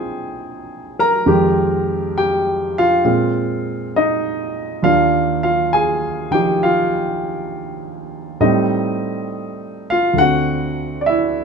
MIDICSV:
0, 0, Header, 1, 2, 480
1, 0, Start_track
1, 0, Key_signature, -3, "major"
1, 0, Tempo, 891530
1, 683, Time_signature, 4, 2, 24, 8
1, 6161, End_track
2, 0, Start_track
2, 0, Title_t, "Grand piano"
2, 0, Program_c, 0, 0
2, 0, Control_c, 0, 64, 127
2, 0, Note_on_c, 0, 48, 54
2, 0, Note_on_c, 0, 58, 53
2, 0, Note_on_c, 0, 60, 43
2, 0, Note_on_c, 0, 62, 49
2, 0, Note_on_c, 0, 63, 39
2, 0, Note_on_c, 0, 65, 52
2, 0, Note_on_c, 0, 68, 68
2, 0, Note_on_c, 0, 79, 72
2, 0, Note_on_c, 0, 80, 81
2, 175, Note_off_c, 0, 80, 0
2, 181, Note_off_c, 0, 68, 0
2, 535, Note_on_c, 0, 70, 81
2, 538, Note_on_c, 0, 82, 88
2, 679, Note_off_c, 0, 60, 0
2, 679, Note_on_c, 0, 41, 61
2, 680, Note_on_c, 0, 51, 55
2, 682, Note_off_c, 0, 48, 0
2, 684, Note_off_c, 0, 58, 0
2, 684, Note_off_c, 0, 63, 0
2, 685, Note_off_c, 0, 62, 0
2, 685, Note_on_c, 0, 56, 58
2, 687, Note_on_c, 0, 67, 75
2, 688, Note_off_c, 0, 65, 0
2, 690, Control_c, 0, 64, 0
2, 694, Note_off_c, 0, 79, 0
2, 779, Control_c, 0, 64, 127
2, 1142, Note_off_c, 0, 70, 0
2, 1166, Note_off_c, 0, 67, 0
2, 1171, Note_on_c, 0, 79, 89
2, 1174, Note_on_c, 0, 67, 63
2, 1184, Note_off_c, 0, 82, 0
2, 1244, Note_off_c, 0, 79, 0
2, 1246, Note_off_c, 0, 67, 0
2, 1499, Note_on_c, 0, 77, 94
2, 1502, Note_on_c, 0, 65, 76
2, 1636, Note_off_c, 0, 56, 0
2, 1636, Note_off_c, 0, 65, 0
2, 1639, Note_off_c, 0, 41, 0
2, 1640, Note_off_c, 0, 51, 0
2, 1640, Note_on_c, 0, 46, 53
2, 1644, Note_on_c, 0, 56, 49
2, 1644, Note_on_c, 0, 60, 49
2, 1644, Note_on_c, 0, 65, 60
2, 1647, Control_c, 0, 64, 0
2, 1752, Control_c, 0, 64, 127
2, 2103, Note_off_c, 0, 77, 0
2, 2134, Note_on_c, 0, 75, 83
2, 2139, Note_on_c, 0, 63, 69
2, 2585, Note_off_c, 0, 75, 0
2, 2587, Note_off_c, 0, 63, 0
2, 2598, Note_on_c, 0, 39, 57
2, 2599, Note_off_c, 0, 46, 0
2, 2601, Note_off_c, 0, 56, 0
2, 2601, Note_off_c, 0, 60, 0
2, 2601, Note_off_c, 0, 65, 0
2, 2605, Note_on_c, 0, 62, 52
2, 2605, Note_on_c, 0, 77, 92
2, 2606, Control_c, 0, 64, 0
2, 2606, Note_on_c, 0, 58, 55
2, 2609, Note_on_c, 0, 65, 62
2, 2706, Control_c, 0, 64, 127
2, 2900, Note_off_c, 0, 77, 0
2, 2920, Note_off_c, 0, 65, 0
2, 2925, Note_on_c, 0, 77, 79
2, 2928, Note_on_c, 0, 65, 56
2, 3071, Note_off_c, 0, 77, 0
2, 3073, Note_off_c, 0, 65, 0
2, 3085, Note_on_c, 0, 80, 89
2, 3092, Note_on_c, 0, 68, 67
2, 3384, Note_off_c, 0, 68, 0
2, 3397, Note_on_c, 0, 51, 46
2, 3402, Note_on_c, 0, 79, 87
2, 3409, Note_on_c, 0, 53, 43
2, 3411, Note_off_c, 0, 80, 0
2, 3414, Note_on_c, 0, 67, 61
2, 3416, Note_on_c, 0, 63, 47
2, 3556, Note_off_c, 0, 67, 0
2, 3565, Note_off_c, 0, 79, 0
2, 3570, Note_on_c, 0, 77, 85
2, 3581, Note_on_c, 0, 65, 64
2, 4508, Note_off_c, 0, 65, 0
2, 4518, Note_off_c, 0, 39, 0
2, 4518, Note_off_c, 0, 51, 0
2, 4521, Note_off_c, 0, 62, 0
2, 4522, Note_off_c, 0, 58, 0
2, 4523, Note_off_c, 0, 63, 0
2, 4524, Note_off_c, 0, 53, 0
2, 4524, Note_on_c, 0, 45, 60
2, 4526, Control_c, 0, 64, 0
2, 4527, Note_on_c, 0, 75, 76
2, 4530, Note_on_c, 0, 55, 50
2, 4532, Note_on_c, 0, 60, 55
2, 4532, Note_on_c, 0, 63, 62
2, 4553, Note_off_c, 0, 77, 0
2, 4635, Control_c, 0, 64, 127
2, 4981, Note_off_c, 0, 75, 0
2, 5331, Note_on_c, 0, 77, 89
2, 5341, Note_on_c, 0, 65, 69
2, 5364, Note_off_c, 0, 77, 0
2, 5373, Note_off_c, 0, 65, 0
2, 5456, Note_on_c, 0, 38, 48
2, 5473, Note_on_c, 0, 50, 48
2, 5482, Note_off_c, 0, 45, 0
2, 5483, Note_on_c, 0, 78, 97
2, 5485, Note_off_c, 0, 55, 0
2, 5485, Note_off_c, 0, 63, 0
2, 5485, Control_c, 0, 64, 0
2, 5486, Note_off_c, 0, 60, 0
2, 5496, Note_on_c, 0, 60, 45
2, 5496, Note_on_c, 0, 66, 76
2, 5505, Note_off_c, 0, 66, 0
2, 5513, Note_on_c, 0, 66, 54
2, 5566, Control_c, 0, 64, 127
2, 5929, Note_on_c, 0, 74, 59
2, 5940, Note_off_c, 0, 78, 0
2, 5956, Note_off_c, 0, 74, 0
2, 5956, Note_on_c, 0, 76, 85
2, 5972, Note_on_c, 0, 64, 65
2, 6161, Note_off_c, 0, 38, 0
2, 6161, Note_off_c, 0, 50, 0
2, 6161, Note_off_c, 0, 60, 0
2, 6161, Note_off_c, 0, 64, 0
2, 6161, Note_off_c, 0, 66, 0
2, 6161, Note_off_c, 0, 76, 0
2, 6161, End_track
0, 0, End_of_file